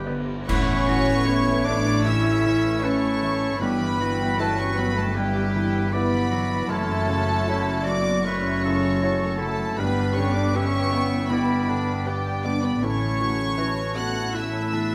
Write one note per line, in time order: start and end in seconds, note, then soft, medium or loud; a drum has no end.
0.00 0.24 G1 medium
0.00 0.43 G2 medium
0.00 0.52 G2 medium
0.00 0.52 D3 soft
0.00 0.11 G3 medium
0.00 0.24 G3 medium
0.00 0.06 B3 medium
0.00 0.29 B3 medium
0.00 0.15 D4 medium
0.00 0.52 D4 medium
0.00 0.12 G4 medium
0.00 0.24 G4 medium
0.00 0.51 B4 medium
0.00 1.27 B4 medium
0.00 0.52 D5 medium
0.00 1.87 B5 medium
0.06 0.52 D3 medium
0.06 0.48 B3 medium
0.30 0.88 B3 medium
0.48 3.56 A1 medium
0.48 2.01 A2 medium
0.48 3.56 A2 medium
0.48 3.63 A2 medium
0.48 2.01 B3 medium
0.48 1.62 C#4 loud
0.48 0.85 E4 medium
0.48 0.89 E4 medium
0.48 1.29 B4 medium
0.48 1.62 C#5 loud
0.48 1.25 F#5 medium
0.48 1.62 C#6 loud
0.48 concert bass drum medium
0.48 crash medium
0.69 3.20 E3 medium
0.86 1.51 E3 medium
0.86 3.02 B3 medium
0.86 1.26 F#4 medium
0.86 1.28 F#4 medium
1.08 3.63 E4 medium
1.26 1.63 C#4 soft
1.26 2.03 E4 medium
1.26 1.67 E4 medium
1.26 2.64 B4 medium
1.26 1.63 B4 medium
1.26 2.86 C#5 medium
1.26 2.06 E5 medium
1.48 3.64 A3 medium
1.65 2.29 A3 soft
1.65 2.05 D4 medium
1.65 2.09 D4 medium
1.65 2.06 D5 medium
1.65 3.64 E5 medium
1.65 2.05 D6 loud
1.88 2.26 B5 medium
2.03 3.56 A2 medium
2.03 3.57 A3 medium
2.03 2.86 C#4 medium
2.03 2.82 E4 medium
2.03 3.57 E4 medium
2.03 2.45 C#5 medium
2.03 2.83 E5 medium
2.03 2.83 E6 medium
2.07 2.83 E5 medium
2.46 3.07 E3 medium
2.46 3.64 C#5 medium
2.65 4.37 B4 medium
2.80 3.60 C#4 medium
2.80 3.63 C#4 medium
2.80 3.60 A4 medium
2.80 3.59 C#5 medium
2.84 3.19 C#4 medium
2.84 3.63 E4 medium
2.84 3.19 B4 medium
2.84 3.61 A5 medium
2.84 3.61 C#6 medium
3.03 3.39 B3 medium
3.21 3.63 E3 medium
3.21 3.61 A3 medium
3.40 6.72 B3 medium
3.58 6.66 G1 medium
3.58 6.72 G2 medium
3.58 6.66 G2 medium
3.58 4.36 B3 medium
3.58 4.38 B3 medium
3.58 4.37 E4 medium
3.58 4.37 B4 medium
3.58 5.94 B4 medium
3.58 5.13 G5 medium
3.62 5.12 G2 medium
3.62 4.00 G4 medium
3.62 4.37 B5 loud
3.79 6.31 E3 medium
4.01 4.62 E3 medium
4.01 5.18 F#4 medium
4.19 5.93 E4 medium
4.36 5.16 F#3 medium
4.36 4.56 A3 medium
4.36 5.15 C#4 medium
4.36 4.74 E4 medium
4.36 4.57 A4 medium
4.36 6.73 B4 medium
4.36 4.58 A5 loud
4.40 4.74 B4 medium
4.55 4.75 C#4 medium
4.55 4.75 C#5 medium
4.55 4.77 C#6 medium
4.75 5.39 F#3 medium
4.75 4.95 B3 medium
4.75 4.96 B4 medium
4.75 5.14 E5 medium
4.75 4.97 B5 loud
4.93 5.14 A3 medium
4.93 5.15 A4 medium
4.93 5.34 B5 medium
4.98 5.16 A5 medium
5.13 5.91 G3 medium
5.13 5.92 B3 medium
5.13 5.55 E4 medium
5.13 5.92 G4 medium
5.13 5.55 G4 medium
5.13 5.54 E5 medium
5.13 5.91 G5 medium
5.17 6.67 G2 medium
5.17 5.94 G5 medium
5.35 6.73 B5 medium
5.55 6.16 E3 medium
5.55 5.92 E4 medium
5.55 7.86 E5 medium
5.74 9.64 F#5 medium
5.91 6.69 B3 medium
5.91 6.31 B3 medium
5.91 6.68 E4 medium
5.91 7.28 E4 medium
5.91 6.28 E4 soft
5.91 6.33 G4 medium
5.91 6.69 B4 medium
5.91 6.28 B4 medium
5.91 6.72 D5 medium
5.91 6.69 B5 loud
5.95 6.71 F#5 medium
6.13 6.51 F#3 medium
6.31 6.74 E3 medium
6.31 6.70 F#3 medium
6.31 6.69 B3 medium
6.31 6.70 F#4 medium
6.52 7.09 F#3 medium
6.69 9.74 F#1 medium
6.69 8.20 F#2 medium
6.69 9.74 F#2 medium
6.69 9.82 F#2 medium
6.69 7.85 A3 medium
6.69 7.47 C#4 medium
6.69 7.20 E4 medium
6.69 8.25 F#4 medium
6.69 7.83 A4 loud
6.69 7.97 C#5 medium
6.69 7.99 E5 medium
6.69 7.87 A5 loud
6.91 9.40 C#3 medium
7.09 7.71 C#3 medium
7.09 9.21 F#3 medium
7.30 9.02 E4 medium
7.46 7.86 C#4 medium
7.46 7.86 E4 medium
7.46 7.82 E4 medium
7.46 9.82 A4 medium
7.46 7.83 C#5 medium
7.68 8.83 F#4 medium
7.84 8.48 F#3 medium
7.84 8.25 B3 medium
7.84 9.01 F#4 medium
7.84 8.24 D5 medium
7.84 8.25 D5 medium
7.84 8.26 E5 medium
7.84 8.25 D6 loud
8.24 9.74 F#2 medium
8.24 9.00 A3 medium
8.24 9.37 C#4 medium
8.24 8.64 C#4 medium
8.24 8.61 B4 medium
8.24 9.39 C#5 medium
8.24 9.01 E5 medium
8.24 8.64 E5 medium
8.24 9.40 C#6 medium
8.46 9.82 C#6 medium
8.64 9.25 C#3 medium
8.64 9.02 E4 medium
8.64 9.01 A4 medium
8.64 9.82 E5 medium
8.84 9.82 F#4 medium
9.02 9.39 A3 medium
9.02 9.36 E4 soft
9.02 9.82 E4 medium
9.02 9.40 F#4 medium
9.02 9.78 A4 medium
9.02 9.81 A4 medium
9.02 9.37 C#5 medium
9.02 9.79 F#5 medium
9.22 9.59 F#3 medium
9.38 9.82 C#3 medium
9.38 9.79 F#3 medium
9.38 9.79 A3 medium
9.38 9.78 C#4 medium
9.38 9.78 E4 medium
9.38 9.78 A4 medium
9.38 9.77 A5 medium
9.60 9.82 F#3 soft
9.75 12.79 G1 medium
9.75 11.26 G2 medium
9.75 12.06 B3 medium
9.75 10.56 D4 medium
9.75 10.53 G4 medium
9.75 10.14 B4 medium
9.75 10.16 B5 medium
9.79 12.86 G2 medium
9.79 12.79 G2 medium
9.79 10.16 B3 medium
9.79 10.58 B4 medium
9.79 12.03 G5 medium
9.99 12.44 D3 medium
10.15 10.78 D3 medium
10.15 12.24 B3 medium
10.15 10.35 C#4 medium
10.15 10.34 C#5 medium
10.15 10.35 C#6 medium
10.34 10.54 D4 medium
10.34 10.74 G4 medium
10.34 10.53 D5 medium
10.34 10.54 D6 medium
10.54 11.30 C#4 medium
10.54 10.94 C#4 medium
10.54 10.92 G4 medium
10.54 10.89 G4 medium
10.54 10.89 B4 medium
10.54 11.87 B4 medium
10.54 11.30 C#5 medium
10.54 11.35 E5 medium
10.54 11.30 C#6 loud
10.75 12.06 G4 medium
10.92 11.53 B3 medium
10.92 11.30 B3 medium
10.92 12.06 E4 medium
10.92 11.30 G5 medium
11.13 11.49 B5 medium
11.29 12.78 G2 medium
11.29 12.06 B3 medium
11.29 11.71 E4 medium
11.29 12.06 B4 medium
11.29 12.07 D5 medium
11.29 11.68 G5 medium
11.29 12.06 B5 medium
11.68 12.29 D3 medium
11.68 12.09 D4 medium
11.68 12.86 G5 medium
11.88 13.58 B4 medium
12.05 12.45 G3 medium
12.05 12.82 B3 medium
12.05 12.81 B3 medium
12.05 12.83 D4 medium
12.05 12.40 G4 soft
12.05 12.44 G4 medium
12.05 12.86 G4 medium
12.05 12.40 B4 medium
12.05 12.82 D5 medium
12.05 12.44 G5 medium
12.05 12.81 G5 medium
12.25 12.63 B3 medium
12.44 12.86 D3 medium
12.44 12.82 B3 medium
12.44 12.64 D4 medium
12.44 12.64 D5 medium
12.44 12.63 D6 medium
12.62 12.82 B3 medium
12.62 14.95 B3 medium
12.62 12.82 B4 medium
12.62 12.83 B5 medium
12.82 14.95 A1 medium
12.82 14.95 A2 medium
12.82 14.30 A2 medium
12.82 14.95 A2 medium
12.82 13.59 A3 medium
12.82 13.78 C#4 medium
12.82 13.21 C#4 medium
12.82 13.61 E4 medium
12.82 13.94 C#5 medium
12.82 14.37 C#5 medium
12.82 13.55 A5 medium
12.82 13.97 C#6 loud
13.02 14.95 E3 soft
13.21 13.82 E3 soft
13.21 14.95 A3 medium
13.21 13.60 F#4 medium
13.40 14.95 E4 medium
13.57 14.35 C#4 medium
13.57 13.92 E4 soft
13.57 13.97 E4 medium
13.57 14.38 F#4 medium
13.57 13.92 B4 medium
13.57 14.95 B4 medium
13.57 14.95 A5 medium
13.77 14.90 A4 medium
13.95 14.56 B3 medium
13.95 14.33 F#4 medium
13.95 14.95 A4 medium
13.95 14.32 E5 soft
13.95 14.35 F#5 medium
13.95 14.35 F#6 medium
14.15 14.51 B5 soft
14.33 14.95 A2 medium
14.33 14.72 C#4 medium
14.33 14.95 E4 medium
14.33 14.75 E4 medium
14.33 14.95 B4 medium
14.33 14.71 E5 medium
14.33 14.95 E5 medium
14.33 14.95 E6 medium
14.53 14.95 B5 medium
14.72 14.95 E3 soft
14.72 14.95 B3 medium
14.72 14.95 D4 medium
14.72 14.95 E5 medium
14.91 14.95 A4 medium